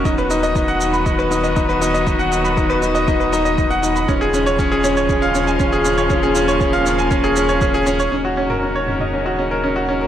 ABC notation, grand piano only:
X:1
M:4/4
L:1/16
Q:1/4=119
K:Dbmix
V:1 name="Grand piano"
^D =B D ^d D ^f D =b D B D d D B D d | ^D ^f D =b D =B D ^d D B D d D f D b | D A D d D A D d D f D a D A D d | D A D d D f D a D A D d D A D d |
D G D B D d D e D G D B D G D B |]